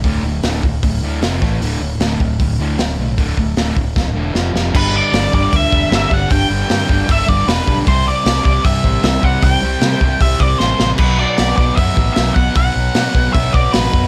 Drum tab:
CC |--------|--------|--------|x-------|
HH |o-o-o-o-|o-o-o-o-|o-o-----|--o-o-o-|
SD |--o---oo|--o---o-|--o-o-oo|--o---o-|
BD |o--oo--o|---oo---|oo-oo---|o--ooo-o|

CC |--------|--------|--------|x-------|
HH |o-o-o-o-|o-o-o-o-|o-o-o---|--o-o-o-|
SD |--o---o-|--o---o-|--o---oo|--o---o-|
BD |o--ooo-o|o--ooo-o|o--ooo--|o--ooo-o|

CC |--------|
HH |o-o-o-o-|
SD |--o---o-|
BD |o--ooo-o|